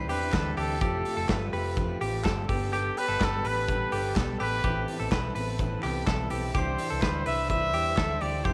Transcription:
Already playing: E3 C4 D4 E4
0.08 E2 G3 D4 G4 B4 B6, open hi-hat
0.32 D2 E3 G3 D4 G4 A4, kick, snare, clap, closed hi-hat
0.57 D2 G3 D4 G4 A4 A6, open hi-hat
0.81 F1 F3 A3 C4 F4 G4 A4 A6, kick, closed hi-hat
1.05 A3 C4 G4, open hi-hat
1.17 F1 A4
1.29 G1 F3 A3 C4 G4 B4, kick, snare, clap, closed hi-hat
1.53 F1 A3 C4 G4 B4, open hi-hat
1.77 F3 A3 C4 G4, kick, closed hi-hat
2.01 A1 A3 C4 G4, open hi-hat
2.25 G1 F3 A3 C4 G4 A4, kick, snare, clap, closed hi-hat
2.49 G1 B3 D4 G4 A4, kick, open hi-hat
2.72 G3 B3 D4 G4 A4 G6, closed hi-hat
2.97 B3 D4 A4 B4 B6, open hi-hat
3.08 G1 A4
3.20 G1 G3 B3 D4 A4 B4 A6, kick, snare, clap, closed hi-hat
3.45 A1 B3 D4 A4 B4 B6, open hi-hat
3.68 G3 B3 D4 A4, kick, closed hi-hat
3.92 G1 B3 D4 G4 A4, open hi-hat
4.15 B1 G3 B3 D4 A4, kick, snare, clap, closed hi-hat
4.40 A1 B3 D4 G4 A4 B4 B6, open hi-hat
4.64 A1 A2 E3 B3 C4 E4 G4 A4 B4, kick, closed hi-hat
4.88 B3 C4 E4, open hi-hat
5.00 A1 A4
5.11 B1 E3 B3 C4 E4 B4, kick, snare, clap, closed hi-hat
5.35 A1 B3 C4 E4 B4, open hi-hat
5.59 A2 E3 B3 C4 E4, kick, closed hi-hat
5.83 C2 B3 C4 E4 G4, clap, open hi-hat
6.06 B1 E3 B3 C4 E4 A4, kick, snare, clap, closed hi-hat
6.30 B1 B3 C4 E4 G4, open hi-hat
6.55 C2 C3 E3 G3 D4 E4 G4 C5 C7, kick, closed hi-hat
6.78 G3 D4 E4, open hi-hat
6.90 C2 A4
7.02 D2 E3 G3 D4 E4 B4, kick, snare, clap, closed hi-hat
7.26 C2 G3 D4 E4 B4 E5 E7, open hi-hat
7.50 C3 E3 G3 D4 E4 E5 E7, kick, closed hi-hat
7.73 E2 G3 D4 E4 G4, open hi-hat
7.97 D2 E3 G3 D4 E4 A4, kick, snare, clap, closed hi-hat
8.21 D2 G3 D4 E4 G4 D5 D7, open hi-hat
8.44 F1 F3 A3 C4 F4 G4 A4 C5 C7, kick, closed hi-hat

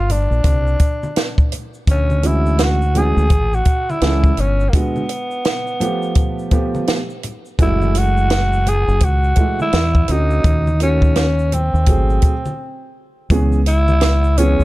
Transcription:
Already playing: G1 F4
0.10 D4, closed hi-hat, low conga, shaker
0.31 A#1, shaker
0.44 C2, kick, closed hi-hat, high conga, shaker
0.67 shaker
0.79 kick, closed hi-hat, shaker
1.03 high conga, shaker
1.16 snare, closed hi-hat, shaker
1.38 kick, shaker
1.52 closed hi-hat, low conga, shaker
1.74 shaker
1.87 D2 C#4, kick, closed hi-hat, shaker
2.10 high conga, shaker
2.23 E3 G#3 C#4 E4 F#4, closed hi-hat, shaker
2.46 shaker
2.59 snare, closed hi-hat, shaker
2.63 F#4
2.82 shaker
2.95 E3 G#3 C#4 F#4 G#4, closed hi-hat, low conga, shaker
3.17 D2, shaker
3.30 A1, kick, closed hi-hat, high conga, shaker
3.53 F#4, shaker
3.65 kick, closed hi-hat, shaker
3.90 E4, high conga, shaker
4.01 C#2 E3 G#3 C#4 A4, snare, closed hi-hat, shaker
4.24 kick, shaker
4.37 G1 C#4, closed hi-hat, low conga, shaker
4.60 shaker
4.69 A#3
4.73 D3 G#3 B3 F#4, kick, closed hi-hat, shaker
4.96 high conga, shaker
5.09 closed hi-hat, shaker
5.31 shaker
5.45 snare, closed hi-hat, shaker
5.67 shaker
5.80 F3 A3 B3 G4, closed hi-hat, low conga, shaker
6.02 shaker
6.15 kick, closed hi-hat, high conga, shaker
6.39 shaker
6.51 F3 A3 B3 G4, kick, closed hi-hat, shaker
6.75 high conga, shaker
6.87 snare, closed hi-hat, shaker
7.10 shaker
7.23 closed hi-hat, low conga, shaker
7.45 shaker
7.59 F#1 E3 G#3 A3 E4 F#4, kick, closed hi-hat, shaker
7.82 high conga, shaker
7.95 F#4, closed hi-hat, shaker
8.17 shaker
8.30 snare, closed hi-hat, shaker
8.53 shaker
8.66 G#4, closed hi-hat, low conga, shaker
8.88 F#1, shaker
9.00 C#2 F#4, kick, closed hi-hat, high conga, shaker
9.24 shaker
9.36 E3 G#3 A3 E4, kick, closed hi-hat, shaker
9.60 E4, high conga, shaker
9.73 E2, snare, closed hi-hat, shaker
9.94 kick, shaker
10.08 D2 A3 C#4 D#4 F#4, closed hi-hat, low conga, shaker
10.30 shaker
10.44 D#2, kick, closed hi-hat, shaker
10.67 high conga, shaker
10.80 D#3 A3 C#4 F#4, closed hi-hat, shaker
11.02 kick, shaker
11.15 snare, closed hi-hat, shaker
11.39 shaker
11.52 C4, closed hi-hat, low conga, shaker
11.74 D#2, shaker
11.86 G#1 F#3 A3 C4 G#4, kick, closed hi-hat, high conga, shaker
12.10 shaker
12.22 kick, closed hi-hat, shaker
12.46 high conga, shaker
13.30 C#2 E3 B3 C#4 G#4, kick, closed hi-hat, shaker
13.52 shaker
13.66 E4, closed hi-hat, shaker
13.88 high conga, shaker
14.01 snare, closed hi-hat, shaker
14.24 shaker
14.38 E3 B3 C#4 G#4, closed hi-hat, low conga, shaker
14.59 C#2, shaker

